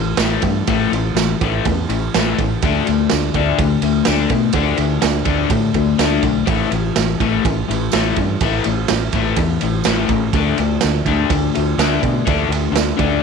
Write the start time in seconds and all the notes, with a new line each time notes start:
Already playing: A1 A2 E3
0.17 A1 A2 E3 A3, snare, ride, tambourine
0.42 G2 A2 E3, kick, ride
0.67 A1 A2 E3 A3, kick, ride
0.92 A1 A2 E3, ride
1.15 A1 A2 E3, snare, ride, tambourine
1.41 A1 A2 E3 A3, kick, ride
1.65 E2 A2 E3, kick, ride
1.89 A1 A2 E3, ride
2.14 A1 A2 E3 A3, snare, ride, tambourine
2.39 A1 A2 E3, kick, ride
2.62 D2 D3 A3 D4, kick, ride
2.87 D2 D3 A3, ride
3.09 D2 D3 A3, snare, ride, tambourine
3.34 D2 D3 A3 D4, kick, ride
3.58 D2 D3 A3, kick, ride
3.82 D2 D3 A3, ride
4.05 D2 D3 A3 D4, snare, ride, tambourine
4.30 B2 D3 A3, kick, ride
4.53 D2 D3 A3 D4, kick, ride
4.77 D2 D3 A3, ride
5.01 D2 D3 A3, snare, ride, tambourine
5.25 D2 D3 A3 D4, kick, ride
5.50 A2 D3 A3, kick, ride
5.74 D2 D3 A3, kick, ride
5.99 D2 D3 A3 D4, snare, ride, tambourine
6.23 B1 D3 A3, kick, ride
6.46 A1 A2 E3 A3, kick, ride
6.71 A1 A2 E3, ride
6.96 A1 A2 E3, snare, ride, tambourine
7.20 A1 A2 E3 A3, kick, ride
7.45 A1 A2 E3, kick, ride
7.68 A1 A2 E3, ride
7.92 A1 A2 E3 A3, snare, ride, tambourine
8.16 G2 A2 E3, kick, ride
8.41 A1 A2 E3 A3, kick, ride
8.64 A1 A2 E3, ride
8.88 A1 A2 E3, snare, ride, tambourine
9.13 A1 A2 E3 A3, kick, ride
9.36 E2 A2 E3, kick, ride
9.61 A1 A2 E3, ride
9.84 A1 A2 E3 A3, snare, ride, tambourine
10.08 A1 A2 E3, kick, ride
10.33 D2 D3 A3 D4, kick, ride
10.58 D2 D3 A3, ride
10.81 D2 D3 A3, snare, ride, tambourine
11.05 D2 D3 A3 D4, kick, ride
11.30 D2 D3 A3, kick, ride
11.55 D2 D3 A3, ride
11.78 D2 D3 A3 D4, snare, ride, tambourine
12.02 B2 D3 A3, kick, ride
12.25 D2 D3 A3 D4, kick, ride
12.49 D2 D3 A3, ride
12.72 D2 D3 A3, snare, ride
12.77 tambourine
12.97 D2 D3 A3 D4, kick, ride